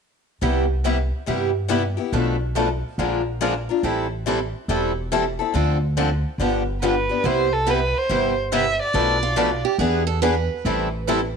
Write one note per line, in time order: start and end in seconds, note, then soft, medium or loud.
0.41 1.10 C2 medium
0.41 0.64 C3 medium
0.41 0.64 G3 medium
0.41 0.65 B3 medium
0.41 0.65 E4 medium
0.41 0.65 G4 medium
0.85 0.97 C3 medium
0.85 0.97 G3 medium
0.85 0.97 B3 medium
0.85 0.97 E4 medium
0.85 0.97 G4 medium
1.26 1.96 G2 medium
1.26 1.49 C3 soft
1.26 1.50 G3 medium
1.26 1.50 B3 medium
1.26 1.50 E4 medium
1.26 1.50 G4 medium
1.68 1.81 C3 medium
1.68 1.81 G3 medium
1.68 1.82 B3 medium
1.68 1.82 E4 medium
1.68 1.82 G4 medium
1.97 2.13 B3 soft
1.97 2.12 E4 soft
1.97 2.12 G4 soft
2.12 2.81 B1 medium
2.12 2.35 B2 medium
2.12 2.35 F3 medium
2.12 2.35 A3 medium
2.12 2.36 D4 medium
2.12 2.36 A4 medium
2.12 2.36 B4 medium
2.55 2.67 B2 medium
2.55 2.68 F3 medium
2.55 2.68 A3 medium
2.55 2.68 D4 medium
2.55 2.68 A4 medium
2.55 2.68 B4 medium
2.98 3.66 A#1 medium
2.98 3.21 D3 medium
2.98 3.21 F3 soft
2.98 3.21 G#3 medium
2.98 3.21 A#3 medium
2.98 3.21 D4 medium
2.98 3.21 F4 medium
2.98 3.21 G#4 medium
2.98 3.21 A#4 medium
3.41 3.53 D3 medium
3.41 3.53 F3 medium
3.41 3.53 G#3 medium
3.41 3.53 A#3 medium
3.41 3.53 D4 medium
3.41 3.53 F4 medium
3.41 3.53 G#4 medium
3.41 3.53 A#4 medium
3.69 3.83 D4 soft
3.69 3.84 F4 soft
3.69 3.83 A#4 soft
3.83 4.52 A1 medium
3.83 4.06 E3 medium
3.83 4.06 G3 medium
3.83 4.06 C4 medium
3.83 4.06 E4 medium
3.83 4.06 A4 medium
4.26 4.38 E3 medium
4.26 4.38 G3 medium
4.26 4.38 C4 medium
4.26 4.39 E4 medium
4.26 4.39 A4 medium
4.68 5.37 E1 medium
4.68 4.91 E3 medium
4.68 4.91 G3 medium
4.68 4.91 C4 medium
4.68 4.91 E4 medium
4.68 4.91 A4 medium
5.12 5.23 E3 medium
5.12 5.23 G3 medium
5.12 5.24 C4 medium
5.12 5.24 E4 medium
5.12 5.24 A4 medium
5.39 5.53 C4 soft
5.39 5.54 E4 soft
5.39 5.53 A4 soft
5.54 6.22 D2 medium
5.54 5.76 D3 medium
5.54 5.76 F3 medium
5.54 5.76 C4 medium
5.54 5.77 D4 medium
5.54 5.77 A4 medium
5.97 6.09 D3 medium
5.97 6.09 F3 medium
5.97 6.09 C4 medium
5.97 6.09 D4 medium
5.97 6.09 A4 medium
6.38 7.07 G1 medium
6.38 6.62 D3 medium
6.38 6.62 F3 medium
6.38 6.62 B3 medium
6.38 6.62 D4 medium
6.38 6.62 G4 medium
6.83 6.94 D3 medium
6.83 6.94 F3 medium
6.83 6.94 B3 medium
6.83 6.94 D4 medium
6.83 6.94 G4 medium
6.83 7.27 B4 medium
7.09 7.24 B3 soft
7.09 7.24 D4 soft
7.09 7.24 G4 soft
7.24 7.92 C2 medium
7.24 7.46 C3 medium
7.24 7.47 G3 medium
7.24 7.47 B3 medium
7.24 7.47 E4 medium
7.24 7.47 G4 medium
7.24 7.55 C5 medium
7.53 7.72 A4 medium
7.66 7.79 C3 medium
7.66 7.79 G3 medium
7.66 7.79 B3 medium
7.66 7.79 E4 medium
7.66 7.79 G4 medium
7.66 7.99 B4 medium
7.98 8.39 C5 medium
8.09 8.78 G1 medium
8.09 8.32 C3 medium
8.09 8.32 G3 medium
8.09 8.32 B3 medium
8.09 8.32 E4 medium
8.09 8.32 G4 medium
8.52 8.64 C3 medium
8.52 8.64 G3 medium
8.52 8.64 B3 medium
8.52 8.64 E4 medium
8.52 8.64 G4 medium
8.52 8.79 E5 medium
8.83 9.62 D5 medium
8.93 9.62 B1 medium
8.93 9.16 B2 medium
8.93 9.16 F3 medium
8.93 9.17 A3 medium
8.93 9.17 D4 medium
8.93 9.17 A4 medium
8.93 9.17 B4 medium
9.23 9.66 F4 medium
9.36 9.49 B2 medium
9.36 9.48 F3 medium
9.36 9.49 A3 medium
9.36 9.49 D4 medium
9.36 9.49 A4 medium
9.36 9.49 B4 medium
9.65 9.79 G4 medium
9.78 10.47 E2 medium
9.78 10.02 E3 medium
9.78 10.02 B3 medium
9.78 10.02 D4 medium
9.78 10.05 G#4 medium
9.78 10.02 G#4 medium
9.78 10.02 B4 medium
10.07 10.21 A4 medium
10.22 10.34 E3 medium
10.22 10.34 B3 medium
10.22 10.34 D4 medium
10.22 10.34 G#4 medium
10.22 11.03 B4 medium
10.22 10.34 B4 medium
10.65 11.33 A1 medium
10.65 10.87 E3 medium
10.65 10.88 G3 medium
10.65 10.88 C4 medium
10.65 10.88 E4 medium
10.65 10.88 A4 medium
11.08 11.19 E3 medium
11.08 11.20 G3 medium
11.08 11.20 C4 medium
11.08 11.20 E4 medium
11.08 11.20 A4 medium